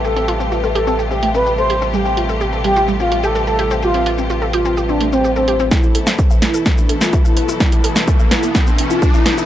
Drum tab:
HH |-oo---o---o---o-|--o---o---o---o-|-oo---o---o---o-|--o---o---o---o-|
SH |xx-xxx-xxx-xxx-x|xx-xxx-xxx-xxx-x|xx-xxx-xxx-xxx-x|xx-xxx-xxx-xxx-x|
SD |----------------|----------------|----------------|o--o--o-o--o----|
BD |----------------|----------------|----------------|o---o---o---o---|

HH |-oo---o---o---o-|
SH |xx-xxx-xxx-xxx-x|
SD |o--o--o-o-----o-|
BD |o---o---o---o---|